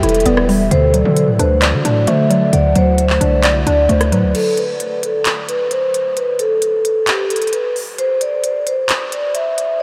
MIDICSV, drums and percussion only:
0, 0, Header, 1, 2, 480
1, 0, Start_track
1, 0, Tempo, 454545
1, 752, Time_signature, 4, 2, 24, 8
1, 10379, End_track
2, 0, Start_track
2, 0, Title_t, "Drums"
2, 33, Note_on_c, 9, 42, 79
2, 93, Note_off_c, 9, 42, 0
2, 93, Note_on_c, 9, 42, 71
2, 153, Note_off_c, 9, 42, 0
2, 153, Note_on_c, 9, 42, 61
2, 213, Note_off_c, 9, 42, 0
2, 213, Note_on_c, 9, 42, 48
2, 270, Note_off_c, 9, 42, 0
2, 270, Note_on_c, 9, 42, 79
2, 376, Note_off_c, 9, 42, 0
2, 393, Note_on_c, 9, 37, 101
2, 499, Note_off_c, 9, 37, 0
2, 517, Note_on_c, 9, 46, 60
2, 622, Note_off_c, 9, 46, 0
2, 753, Note_on_c, 9, 42, 80
2, 859, Note_off_c, 9, 42, 0
2, 991, Note_on_c, 9, 42, 77
2, 1096, Note_off_c, 9, 42, 0
2, 1230, Note_on_c, 9, 42, 93
2, 1336, Note_off_c, 9, 42, 0
2, 1473, Note_on_c, 9, 42, 82
2, 1578, Note_off_c, 9, 42, 0
2, 1708, Note_on_c, 9, 42, 73
2, 1712, Note_on_c, 9, 39, 118
2, 1813, Note_off_c, 9, 42, 0
2, 1817, Note_off_c, 9, 39, 0
2, 1953, Note_on_c, 9, 42, 78
2, 2059, Note_off_c, 9, 42, 0
2, 2189, Note_on_c, 9, 42, 80
2, 2295, Note_off_c, 9, 42, 0
2, 2435, Note_on_c, 9, 42, 86
2, 2540, Note_off_c, 9, 42, 0
2, 2672, Note_on_c, 9, 42, 81
2, 2777, Note_off_c, 9, 42, 0
2, 2909, Note_on_c, 9, 42, 74
2, 3015, Note_off_c, 9, 42, 0
2, 3149, Note_on_c, 9, 42, 90
2, 3255, Note_off_c, 9, 42, 0
2, 3271, Note_on_c, 9, 39, 73
2, 3377, Note_off_c, 9, 39, 0
2, 3391, Note_on_c, 9, 42, 91
2, 3497, Note_off_c, 9, 42, 0
2, 3626, Note_on_c, 9, 42, 75
2, 3630, Note_on_c, 9, 39, 115
2, 3732, Note_off_c, 9, 42, 0
2, 3736, Note_off_c, 9, 39, 0
2, 3872, Note_on_c, 9, 42, 81
2, 3978, Note_off_c, 9, 42, 0
2, 4111, Note_on_c, 9, 42, 49
2, 4217, Note_off_c, 9, 42, 0
2, 4231, Note_on_c, 9, 42, 81
2, 4232, Note_on_c, 9, 37, 102
2, 4337, Note_off_c, 9, 37, 0
2, 4337, Note_off_c, 9, 42, 0
2, 4355, Note_on_c, 9, 42, 78
2, 4460, Note_off_c, 9, 42, 0
2, 4591, Note_on_c, 9, 42, 81
2, 4591, Note_on_c, 9, 49, 99
2, 4696, Note_off_c, 9, 49, 0
2, 4697, Note_off_c, 9, 42, 0
2, 4831, Note_on_c, 9, 42, 72
2, 4936, Note_off_c, 9, 42, 0
2, 5069, Note_on_c, 9, 42, 93
2, 5175, Note_off_c, 9, 42, 0
2, 5313, Note_on_c, 9, 42, 82
2, 5418, Note_off_c, 9, 42, 0
2, 5547, Note_on_c, 9, 42, 73
2, 5551, Note_on_c, 9, 39, 114
2, 5653, Note_off_c, 9, 42, 0
2, 5657, Note_off_c, 9, 39, 0
2, 5793, Note_on_c, 9, 42, 79
2, 5899, Note_off_c, 9, 42, 0
2, 6030, Note_on_c, 9, 42, 77
2, 6135, Note_off_c, 9, 42, 0
2, 6275, Note_on_c, 9, 42, 81
2, 6381, Note_off_c, 9, 42, 0
2, 6513, Note_on_c, 9, 42, 77
2, 6618, Note_off_c, 9, 42, 0
2, 6750, Note_on_c, 9, 42, 73
2, 6855, Note_off_c, 9, 42, 0
2, 6989, Note_on_c, 9, 42, 92
2, 7095, Note_off_c, 9, 42, 0
2, 7232, Note_on_c, 9, 42, 84
2, 7338, Note_off_c, 9, 42, 0
2, 7468, Note_on_c, 9, 42, 70
2, 7472, Note_on_c, 9, 39, 115
2, 7573, Note_off_c, 9, 42, 0
2, 7577, Note_off_c, 9, 39, 0
2, 7712, Note_on_c, 9, 42, 77
2, 7772, Note_off_c, 9, 42, 0
2, 7772, Note_on_c, 9, 42, 69
2, 7832, Note_off_c, 9, 42, 0
2, 7832, Note_on_c, 9, 42, 58
2, 7892, Note_off_c, 9, 42, 0
2, 7892, Note_on_c, 9, 42, 47
2, 7949, Note_off_c, 9, 42, 0
2, 7949, Note_on_c, 9, 42, 75
2, 8055, Note_off_c, 9, 42, 0
2, 8194, Note_on_c, 9, 46, 60
2, 8300, Note_off_c, 9, 46, 0
2, 8432, Note_on_c, 9, 42, 78
2, 8537, Note_off_c, 9, 42, 0
2, 8670, Note_on_c, 9, 42, 74
2, 8775, Note_off_c, 9, 42, 0
2, 8909, Note_on_c, 9, 42, 91
2, 9014, Note_off_c, 9, 42, 0
2, 9152, Note_on_c, 9, 42, 81
2, 9258, Note_off_c, 9, 42, 0
2, 9387, Note_on_c, 9, 42, 72
2, 9391, Note_on_c, 9, 39, 113
2, 9493, Note_off_c, 9, 42, 0
2, 9497, Note_off_c, 9, 39, 0
2, 9633, Note_on_c, 9, 42, 82
2, 9739, Note_off_c, 9, 42, 0
2, 9870, Note_on_c, 9, 42, 77
2, 9975, Note_off_c, 9, 42, 0
2, 10116, Note_on_c, 9, 42, 82
2, 10221, Note_off_c, 9, 42, 0
2, 10379, End_track
0, 0, End_of_file